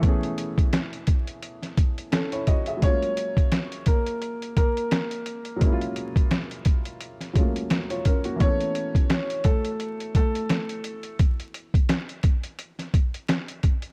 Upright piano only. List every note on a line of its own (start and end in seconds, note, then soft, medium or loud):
2.83 3.84 C#4 medium
2.83 3.83 C#5 loud
3.87 4.53 A#3 medium
3.87 4.53 A#4 medium
4.57 5.58 A#3 medium
4.57 5.57 A#4 medium
8.41 9.41 C#4 medium
8.41 9.41 C#5 loud
9.45 10.11 A3 medium
9.45 10.11 A4 medium
10.16 11.17 A3 medium
10.16 11.16 A4 medium